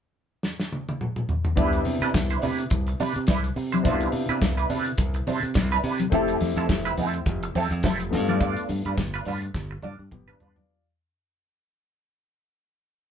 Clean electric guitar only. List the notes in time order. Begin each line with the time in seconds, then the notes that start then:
1.57 D4 E4 B4
1.85 muted clean electric guitar stroke
2.02 D4 E4 B4
2.15 muted clean electric guitar stroke
2.30 D4 E4 C5
2.42 D4 E4 B4
2.59 muted clean electric guitar stroke
2.88 muted clean electric guitar stroke
3.00 D4 E4 B4
3.16 muted clean electric guitar stroke
3.29 D4 E4 B4
3.44 muted clean electric guitar stroke
3.56 muted clean electric guitar stroke
3.72 D4 E4 C5
3.84 D4 E4 C5
4.13 muted clean electric guitar stroke
4.29 D4 E4 B4
4.42 muted clean electric guitar stroke
4.57 D4 E4 B4
4.70 D4 E4 B4
4.86 muted clean electric guitar stroke
5.15 muted clean electric guitar stroke
5.28 D4 E4 C5
5.44 muted clean electric guitar stroke
5.56 muted clean electric guitar stroke
5.72 D4 E4 B4
5.84 D4 E4 B4
6.00 muted clean electric guitar stroke
6.13 C4 E4 A4
6.57 C4 E4 A4
6.70 muted clean electric guitar stroke
6.85 C4 E4 B4
6.98 C4 E4 A4
7.15 muted clean electric guitar stroke
7.43 muted clean electric guitar stroke
7.56 C4 E4 A4
7.73 muted clean electric guitar stroke
7.85 C4 E4 A4
8.00 muted clean electric guitar stroke
8.13 muted clean electric guitar stroke
8.29 D4 F4 D5
8.42 D4 F4 D5
8.71 muted clean electric guitar stroke
8.86 D4 F4 B4
8.99 muted clean electric guitar stroke
9.14 D4 F4 B4
9.26 D4 F4 B4
9.43 muted clean electric guitar stroke
9.71 muted clean electric guitar stroke
9.83 D4 F4 D5
10.00 muted clean electric guitar stroke
10.12 muted clean electric guitar stroke
10.28 D4 F4 B4
10.40 D4 F4 B4
10.56 muted clean electric guitar stroke